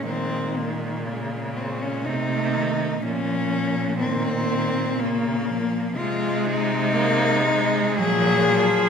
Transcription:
<<
  \new Staff \with { instrumentName = "Cello" } { \time 3/4 \key bes \minor \tempo 4 = 61 c'8 bes4 c'16 des'16 ees'4 | des'4 c'4 bes4 | f'8 ees'4. aes'4 | }
  \new Staff \with { instrumentName = "Cello" } { \clef bass \time 3/4 \key bes \minor aes2 a4 | bes2. | aes4 aes4 ges8 f8 | }
  \new Staff \with { instrumentName = "Cello" } { \clef bass \time 3/4 \key bes \minor ees4 des4 c8 ees8 | f4 ees4 des8 f8 | aes4 bes8 aes8 f8 ges8 | }
  \new Staff \with { instrumentName = "Cello" } { \clef bass \time 3/4 \key bes \minor bes,2 c4 | bes,2. | c2 bes,4 | }
>>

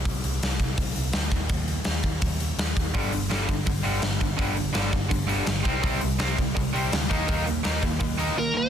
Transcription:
<<
  \new Staff \with { instrumentName = "Lead electric guitar" } { \time 4/4 \key g \minor \tempo 4 = 166 r1 | r1 | r1 | r1 |
r1 | r2. bes'8 c''8 | }
  \new Staff \with { instrumentName = "Distorted electric guitar" } { \clef bass \time 4/4 \key g \minor r1 | r1 | <g, d g>8 <g, d>8 <g, d g>8 <g, d>8 <g, d>8 <g, d g>8 <g, d>8 <g, d>8 | <g, d g>8 <g, d>8 <g, d g>8 <g, d>8 <g, d>8 <g, d g>8 <g, d>8 <c g c'>8 |
<c g c'>8 <c g>8 <c g c'>8 <c g>8 <c g>8 <c g c'>8 <c g>8 <ees bes ees'>8 | <ees bes ees'>8 <ees bes>8 <ees bes ees'>8 <ees bes>8 <ees bes>8 <ees bes ees'>8 <ees bes>8 <ees bes>8 | }
  \new Staff \with { instrumentName = "Overdriven electric guitar" } { \clef bass \time 4/4 \key g \minor r1 | r1 | <g, d g>8 <g, d>8 <g, d g>8 <g, d>8 <g, d>8 <g, d g>8 <g, d>8 <g, d>8 | <g, d g>8 <g, d>8 <g, d g>8 <g, d>8 <g, d>8 <g, d g>8 <g, d>8 <c g c'>8 |
<c g c'>8 <c g>8 <c g c'>8 <c g>8 <c g>8 <c g c'>8 <c g>8 <ees bes ees'>8 | <ees bes ees'>8 <ees bes>8 <ees bes ees'>8 <ees bes>8 <ees bes>8 <ees bes ees'>8 <ees bes>8 <ees bes>8 | }
  \new Staff \with { instrumentName = "Picked electric bass" } { \clef bass \time 4/4 \key g \minor c,8 c,8 c,8 c,8 c,8 c,8 d,8 ees,8 | ees,4 ees,8 ees,8 ees,4 ees,8 ees,8 | g,,8 g,,8 g,,8 g,,8 g,,8 g,,8 g,,8 g,,8 | g,,4 g,,8 g,,8 g,,4 g,,8 c,8 |
c,8 c,8 c,8 c,8 c,8 c,8 d,8 ees,8 | ees,4 ees,8 ees,8 ees,4 r4 | }
  \new DrumStaff \with { instrumentName = "Drums" } \drummode { \time 4/4 <hho bd>8 hho8 <hho sn>8 <hho bd>8 <hho bd>8 hho8 <hho sn>8 <hho bd>8 | <hho bd>8 hho8 <hho sn>8 <hho bd>8 <hho bd>8 hho8 <hho sn>8 <hho bd>8 | <hho bd>8 hho8 <hho sn>8 <hho bd>8 <hho bd>8 hho8 <hho sn>8 <hho bd>8 | <hho bd>8 hho8 <hho sn>8 <hho bd>8 <hho bd>8 hho8 <hho sn>8 <hho bd>8 |
<hho bd>8 hho8 <hho sn>8 <hho bd>8 <hho bd>8 hho8 <hho sn>8 <hho bd>8 | <hho bd>8 hho8 <hho sn>8 <hho bd>8 <hho bd>8 hho8 r4 | }
>>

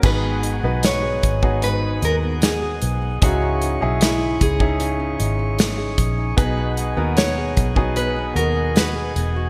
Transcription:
<<
  \new Staff \with { instrumentName = "Tonewheel organ" } { \time 4/4 \key gis \minor \tempo 4 = 76 << { <fis'' gis''>1 | <cis'' cis'''>1 | <fis'' gis''>1 | } \\ { <gis' dis''>1~ | <gis' dis''>1~ | <gis' dis''>1 | } >> }
  \new Staff \with { instrumentName = "Nylon-string guitar" } { \time 4/4 \key gis \minor b'4 cis''4 b'8 ais'8 gis'4 | fis'4 e'8 gis'4. r4 | b'4 cis''4 b'8 ais'8 b'4 | }
  \new Staff \with { instrumentName = "Grand piano" } { \time 4/4 \key gis \minor <b dis' fis' gis'>8. <b dis' fis' b'>4 <b dis' fis' gis'>2 r16 | <cis' dis' e' gis'>8. <cis' e' gis' dis''>4 <cis' dis' e' gis'>2 r16 | <b dis' fis' gis'>8. <b dis' fis' ais'>4 <b dis' fis' gis'>2 r16 | }
  \new Staff \with { instrumentName = "Grand piano" } { \clef bass \time 4/4 \key gis \minor <gis, dis>4. r2 r8 | gis,4. r2 r8 | b,4. r2 r8 | }
  \new Staff \with { instrumentName = "Nylon-string guitar" } { \time 4/4 \key gis \minor gis,16 b16 dis'16 b16 dis'16 gis'16 b16 dis'16 gis,16 b16 dis'16 b16 dis'16 gis'16 b16 dis'16 | cis16 cis'16 dis'16 cis'8 gis'16 cis'8 cis16 cis'16 dis'16 cis'16 dis'16 gis'16 cis'16 dis'16 | b,16 b16 fis'16 b16 fis'16 gis'16 b16 fis'16 b,16 b16 fis'16 b16 fis'16 gis'16 b16 fis'16 | }
  \new Staff \with { instrumentName = "Fingered electric bass" } { \clef bass \time 4/4 \key gis \minor gis,,8. b,,8. gis,,4 dis,4 b,,8 | cis,8. b,,8. cis,4 gis,,4 ais,,8 | b,,8. dis,8. b,,4 dis,4 e,,8 | }
  \new DrumStaff \with { instrumentName = "Drums" } \drummode { \time 4/4 <cymc bd>8 hh8 <hh sn>8 <hh bd>16 bd16 hh8 hh8 <hh sn>8 hh8 | <hh bd>8 hh8 <hh sn>8 <hh bd>16 bd16 hh8 hh8 <hh sn>8 <hh bd>8 | <hh bd>8 hh8 <hh sn>8 <hh bd>16 bd16 hh8 hh8 <hh sn>8 hh8 | }
>>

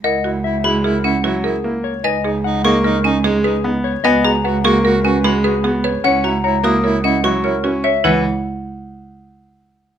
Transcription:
<<
  \new Staff \with { instrumentName = "Xylophone" } { \time 5/4 \key cis \dorian \tempo 4 = 150 fis''8 r4 b''8 r8 fis''8 r2 | gis''8 r4 cis'''8 r8 gis''8 r2 | gis''8 ais''8 r8 cis'''8 r8 gis''8 b''8 r4. | fis''8 ais''8 r8 dis'''8 r8 fis''8 cis'''8 r4. |
fis''8 r1 r8 | }
  \new Staff \with { instrumentName = "Clean electric guitar" } { \time 5/4 \key cis \dorian dis''8 r8 e''8 r8 ais'8 r4 gis'8 r8 cis''8 | dis''8 r8 fis''8 r8 ais'8 r4 gis'8 r8 cis''8 | dis''8 r8 fis''8 r8 ais'8 b'8 r8 gis'8 r8 cis''8 | fis''8 r8 ais''8 r8 cis''8 dis''8 r8 ais'8 r8 e''8 |
b'8 r1 r8 | }
  \new Staff \with { instrumentName = "Marimba" } { \time 5/4 \key cis \dorian ais'8 fis'8 r8 fis'8 gis'8 cis'8 fis'8 ais'8 r4 | b'8 gis'8 r8 gis'8 ais'8 cis'8 gis'8 b'8 r4 | b'8 gis'8 b'8 gis'8 ais'8 cis'8 gis'8 b'8 gis'8 b'8 | cis''8 fis'8 cis''8 fis'8 ais'8 cis'8 fis'8 cis''8 fis'8 cis''8 |
e'8 r1 r8 | }
  \new Staff \with { instrumentName = "Soprano saxophone" } { \time 5/4 \key cis \dorian e'8 e'8 e'8 e'8 e'8 e'8 e'8 e'8 e'8 r8 | dis'8 dis'8 dis'8 dis'8 dis'8 dis'8 dis'8 dis'8 dis'8 r8 | fis'8 fis'8 fis'8 fis'8 fis'8 fis'8 fis'8 fis'8 fis'8 r8 | e'8 e'8 e'8 e'8 e'8 e'8 e'8 e'8 e'8 r8 |
r1 r4 | }
  \new Staff \with { instrumentName = "Grand piano" } { \time 5/4 \key cis \dorian r4. gis8 r4 fis8 r8 ais8 r8 | r4. ais8 r4 gis8 r8 b8 r8 | b8 r4 ais8 r4 gis8 r8 b8 r8 | cis'8 r4 ais8 r4 fis8 r8 cis'8 r8 |
e8 r1 r8 | }
  \new Staff \with { instrumentName = "Cello" } { \clef bass \time 5/4 \key cis \dorian cis,1~ cis,4 | cis,1~ cis,4 | cis,1~ cis,4 | cis,1~ cis,4 |
cis,8 r1 r8 | }
>>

